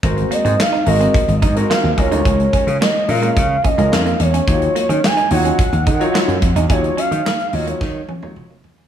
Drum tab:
HH |xxxx--oxxxxx--xx|xxxx--oxx-xx-xxx|xxxx-xoxxxxx-xxx|xxxx-xox--------|
CP |----x-------x---|----x-------x---|----x-------x---|----x-----------|
SD |----o-------o---|----o-------o---|----o-------o---|----o---o-------|
T1 |----------------|----------------|----------------|----------oo----|
T2 |----------------|----------------|----------------|------------o---|
FT |----------------|----------------|----------------|--------------oo|
BD |o-------o-o---o-|o-o-----o-o-----|o-------o-o---o-|o-------o-------|